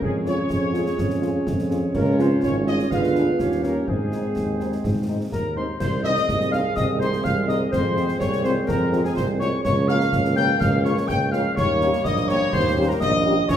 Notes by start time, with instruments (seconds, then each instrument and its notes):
0.01 tuba F2, euphonium G#3, trombone section G#3 C#4, woodwind section G#4 C#5, trumpet section G#4, concert bass drum
0.25 euphonium C#4, french horn section C#4 F4 G#4, trumpet section C#5, snare
0.49 tuba F2, concert bass drum, snare
0.74 french horn section C#4 F4 G#4, snare
0.86 snare
0.98 tuba F2, concert bass drum, snare
1.10 snare
1.22 french horn section C#4 F4 G#4, snare
1.46 tuba F2, concert bass drum, snare
1.59 snare
1.70 french horn section C#4 F4 G#4, snare
1.94 tuba C#2, trombone section F3 C#4, euphonium A#3, woodwind section F4 C#5, trumpet section A#4, concert bass drum, crash
2.18 euphonium C4, french horn section C#4 F4 G#4, trumpet section C5, snare
2.43 tuba G#1, trombone section F3 C#4, euphonium C#4, trumpet section C#5, concert bass drum, snare
2.66 trombone section G3, french horn section C#4 F4 G#4, euphonium D#4, trumpet section D#5, snare
2.79 snare
2.91 tuba D2, trombone section G#3 B3, euphonium F4, woodwind section G#4 B4, trumpet section F5, concert bass drum, snare
3.04 snare
3.15 french horn section B3 D4 G#4, snare
3.39 tuba D#2, trombone section G3 C#4, woodwind section G4 C#5, concert bass drum, snare
3.52 snare
3.63 euphonium A#3, french horn section A#3 C#4 G4, trumpet section A#4, snare
3.87 tuba G#2, trombone section G#3 C4, euphonium G#3, trumpet section G#4, woodwind section G#4 C5, concert bass drum
4.12 french horn section G#3 C4 D#4, snare
4.36 tuba D#2, concert bass drum, snare
4.60 french horn section G#3 C4 D#4, snare
4.72 snare
4.84 tuba G#2, concert bass drum, snare
5.08 french horn section G#3 C4 D#4
5.32 tuba D#2, woodwind section A#4, trumpet section A#4, piccolo A#5, concert bass drum, snare
5.56 french horn section G#3 C4 D#4, trumpet section C5, woodwind section C5, piccolo C6
5.80 tuba C2, trombone section G#3 C4, trumpet section C5, woodwind section C5, piccolo C6, concert bass drum, snare, crash
6.04 french horn section G#3 C4 D#4, trumpet section D#5, woodwind section D#5, piccolo D#6, snare
6.17 snare
6.28 tuba C2, concert bass drum, snare
6.41 snare
6.52 french horn section G#3 C4 D#4, woodwind section F5, trumpet section F5, piccolo F6, snare
6.75 tuba C2, trumpet section D#5, woodwind section D#5, piccolo D#6, concert bass drum, snare
6.99 french horn section G#3 C4 D#4, trumpet section C5, woodwind section C5, piccolo C6, snare
7.13 snare
7.24 tuba C2, trumpet section F5, woodwind section F5, piccolo F6, concert bass drum, snare
7.47 french horn section G#3 C4 D#4, trumpet section D#5, woodwind section D#5, piccolo D#6, snare
7.72 tuba F2, trombone section G#3 C4, trumpet section C5, woodwind section C5, piccolo C6, concert bass drum, snare
7.96 french horn section G#3 C4 F4, snare
8.08 snare
8.20 tuba C2, woodwind section C#5, trumpet section C#5, piccolo C#6, concert bass drum, snare
8.32 snare
8.43 french horn section G#3 C4 F4, trumpet section C5, woodwind section C5, piccolo C6, snare
8.67 tuba F2, woodwind section A#4, trumpet section A#4, piccolo A#5, concert bass drum, snare
8.92 french horn section G#3 C4 F4, snare
9.04 woodwind section G#4, trumpet section G#4, piccolo G#5, snare
9.15 tuba C2, trumpet section C5, woodwind section C5, piccolo C6, concert bass drum, snare
9.39 french horn section G#3 C4 F4, trumpet section C#5, woodwind section C#5, piccolo C#6, snare
9.64 tuba C#2, trombone section F3 A#3, woodwind section C#5, trumpet section C#5, piccolo C#6, concert bass drum, snare, crash
9.88 french horn section A#3 C#4 F4, woodwind section F5, trumpet section F5, piccolo F6, snare
10.01 snare
10.12 tuba C#2, concert bass drum, snare
10.25 snare
10.36 french horn section A#3 C#4 F4, woodwind section G5, trumpet section G5, piccolo G6, snare
10.59 tuba C#2, woodwind section F5, trumpet section F5, piccolo F6, concert bass drum, snare
10.84 french horn section A#3 C#4 F4, woodwind section C#5, trumpet section C#5, piccolo C#6, snare
10.97 snare
11.08 tuba C#2, woodwind section G5, trumpet section G5, piccolo G6, concert bass drum, snare
11.32 french horn section A#3 C#4 F4, woodwind section F5, trumpet section F5, piccolo F6, snare
11.56 tuba D#2, trombone section G3 A#3, woodwind section C#5, trumpet section C#5, piccolo C#6, concert bass drum, snare
11.81 french horn section A#3 C#4 G4, snare
11.93 snare
12.04 tuba A#1, woodwind section D#5, trumpet section D#5, piccolo D#6, concert bass drum, snare
12.17 snare
12.28 french horn section A#3 C#4 G4, woodwind section C#5, trumpet section C#5, piccolo C#6, snare
12.52 tuba D#2, trumpet section C5, woodwind section C5, piccolo C6, concert bass drum, snare
12.77 french horn section A#3 C#4 G4
12.88 woodwind section A#4, trumpet section A#4, piccolo A#5
13.00 tuba A#1, woodwind section D#5, trumpet section D#5, piccolo D#6, concert bass drum, snare
13.25 french horn section A#3 C#4 G4
13.48 tuba A#1, trombone section F3 C#4, woodwind section C#5, trumpet section C#5, piccolo C#6, concert bass drum, snare, crash